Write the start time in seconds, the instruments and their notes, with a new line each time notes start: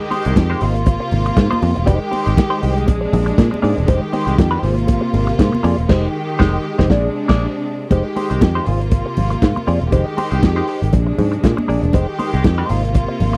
Already playing: string section D#3 G#3 G4
0.00 muted clean electric guitar stroke
0.10 clean electric guitar G#3 D#4 G4 C5, open hi-hat, muted conga
0.24 picked electric bass C2, clean electric guitar G#3 D#4 G4 C5, closed hi-hat
0.36 picked electric bass F2, kick, snare, closed hi-hat, high conga
0.50 clean electric guitar G#3 D#4 G4 C5
0.61 picked electric bass G#1, string section C3 A#3 F4, clean electric guitar A#3 D#4 F4 C5, open hi-hat
0.75 muted clean electric guitar stroke, closed hi-hat
0.86 muted clean electric guitar stroke, kick, closed hi-hat, muted conga
1.00 muted clean electric guitar stroke
1.11 picked electric bass G#1, open hi-hat, muted conga
1.26 muted clean electric guitar stroke, closed hi-hat
1.37 picked electric bass G#2, muted clean electric guitar stroke, kick, snare, closed hi-hat, high conga
1.51 clean electric guitar A#3 D#4 F4 C5, high conga
1.61 picked electric bass F2, muted clean electric guitar stroke, open hi-hat, high conga
1.75 picked electric bass E1, muted clean electric guitar stroke, closed hi-hat
1.86 picked electric bass F1, string section D#3 G#3 G4, clean electric guitar G#3 D#4 G4 C5, kick, closed hi-hat, muted conga
2.00 muted clean electric guitar stroke
2.11 clean electric guitar G#3 D#4 G4 C5, open hi-hat, muted conga
2.24 picked electric bass G#1, clean electric guitar G#3 D#4 G4 C5, snare, closed hi-hat
2.37 kick, snare, closed hi-hat, high conga
2.50 clean electric guitar G#3 D#4 G4 C5
2.61 picked electric bass C2, clean electric guitar G#3 D#4 G4 C5, open hi-hat
2.75 muted clean electric guitar stroke, closed hi-hat
2.86 picked electric bass A#1, string section C3 D4, muted clean electric guitar stroke, kick, closed hi-hat, muted conga, low conga
3.01 muted clean electric guitar stroke
3.13 picked electric bass A#1, open hi-hat, muted conga, low conga
3.26 muted clean electric guitar stroke, closed hi-hat
3.38 picked electric bass A#2, kick, snare, closed hi-hat, high conga
3.51 muted clean electric guitar stroke, high conga
3.62 picked electric bass G#2, clean electric guitar A#3 D4 G#4 D5, open hi-hat, high conga
3.77 picked electric bass E1, muted clean electric guitar stroke, closed hi-hat
3.87 picked electric bass F1, string section D#3 G4, clean electric guitar G#3 D#4 G4 C5, kick, closed hi-hat, muted conga
4.02 muted clean electric guitar stroke
4.12 clean electric guitar G#3 D#4 G4 C5, open hi-hat, muted conga
4.26 picked electric bass C2, clean electric guitar G#3 D#4 G4 C5, snare, closed hi-hat
4.38 picked electric bass F2, kick, snare, closed hi-hat, high conga
4.51 clean electric guitar G#3 D#4 G4 C5
4.62 picked electric bass G#1, string section C3 A#3 F4, clean electric guitar A#3 F4 G#4 C5, open hi-hat
4.76 muted clean electric guitar stroke, closed hi-hat
4.87 muted clean electric guitar stroke, kick, closed hi-hat, muted conga
5.01 muted clean electric guitar stroke
5.14 picked electric bass G#1, open hi-hat, muted conga
5.27 muted clean electric guitar stroke, closed hi-hat
5.39 picked electric bass G#2, kick, snare, closed hi-hat, high conga
5.53 muted clean electric guitar stroke, high conga
5.63 picked electric bass F2, clean electric guitar A#3 F4 G#4 D5, open hi-hat, high conga
5.78 picked electric bass E1, muted clean electric guitar stroke, closed hi-hat
5.89 picked electric bass F1, string section D#3 G#3 G4, clean electric guitar G#3 D#4 G4 C5, kick, snare, crash
6.39 picked electric bass F1, clean electric guitar G#3 D#4 G4 C5, kick, snare
6.78 picked electric bass F1, clean electric guitar G#3 D#4 G4 C5, kick, snare
6.89 picked electric bass A#1, string section C3 D4, clean electric guitar A#3 D4 G#4 D5, kick, snare
7.28 picked electric bass A#1, clean electric guitar A#3 D4 G#4 D5, kick, snare, crash
7.90 picked electric bass F1, string section D#3 G#3 G4, clean electric guitar G#3 D#4 G4 C5, kick, closed hi-hat, muted conga
8.05 muted clean electric guitar stroke
8.16 clean electric guitar G#3 D#4 G4 C5, open hi-hat, muted conga
8.30 picked electric bass C2, clean electric guitar G#3 D#4 G4 C5, closed hi-hat
8.41 picked electric bass F2, kick, snare, closed hi-hat, high conga
8.55 clean electric guitar G#3 D#4 G4 C5
8.65 picked electric bass G#1, string section C3 A#3 F4, clean electric guitar A#3 F4 G#4 C5, open hi-hat
8.81 muted clean electric guitar stroke, closed hi-hat
8.91 muted clean electric guitar stroke, kick, closed hi-hat, muted conga
9.06 muted clean electric guitar stroke
9.16 picked electric bass G#1, open hi-hat, muted conga, low conga
9.30 muted clean electric guitar stroke, closed hi-hat
9.42 picked electric bass G#2, kick, snare, closed hi-hat, high conga
9.56 muted clean electric guitar stroke, high conga
9.67 picked electric bass F2, clean electric guitar A#3 F4 G#4 D5, open hi-hat
9.81 picked electric bass E1, muted clean electric guitar stroke, closed hi-hat
9.92 picked electric bass F1, string section D#3 G#3 G4, clean electric guitar G#3 D#4 G4 C5, kick, closed hi-hat, muted conga
10.06 muted clean electric guitar stroke
10.17 clean electric guitar G#3 D#4 G4 C5, open hi-hat, muted conga
10.31 picked electric bass C2, clean electric guitar G#3 D#4 G4 C5, closed hi-hat
10.42 picked electric bass F2, muted clean electric guitar stroke, kick, snare, closed hi-hat, high conga
10.56 clean electric guitar G#3 D#4 G4 C5
10.68 clean electric guitar G#3 D#4 G4 C5, open hi-hat
10.82 picked electric bass G#1, muted clean electric guitar stroke, closed hi-hat
10.92 picked electric bass A#1, string section C3 G#3 D4, muted clean electric guitar stroke, kick, closed hi-hat, muted conga, low conga
11.07 muted clean electric guitar stroke
11.18 picked electric bass G#2, open hi-hat, muted conga, low conga
11.32 muted clean electric guitar stroke, closed hi-hat
11.43 picked electric bass A#2, kick, snare, closed hi-hat, high conga
11.57 muted clean electric guitar stroke, high conga
11.68 picked electric bass A#1, clean electric guitar A#3 D4 G#4 D5, open hi-hat
11.82 picked electric bass E1, muted clean electric guitar stroke, closed hi-hat
11.93 picked electric bass F1, string section D#3 G#3 G4, clean electric guitar G#3 D#4 G4 C5, kick, closed hi-hat, muted conga
12.18 clean electric guitar G#3 D#4 G4 C5, open hi-hat, muted conga
12.33 picked electric bass C2, clean electric guitar G#3 D#4 G4 C5, snare, closed hi-hat
12.44 picked electric bass F2, muted clean electric guitar stroke, kick, snare, closed hi-hat, high conga
12.58 clean electric guitar G#3 D#4 G4 C5
12.68 picked electric bass G#1, string section C3 A#3 F4, clean electric guitar A#3 D#4 F4 C5, open hi-hat
12.84 muted clean electric guitar stroke, closed hi-hat
12.94 muted clean electric guitar stroke, kick, closed hi-hat, muted conga
13.08 muted clean electric guitar stroke
13.20 picked electric bass G#1, open hi-hat, low conga
13.33 muted clean electric guitar stroke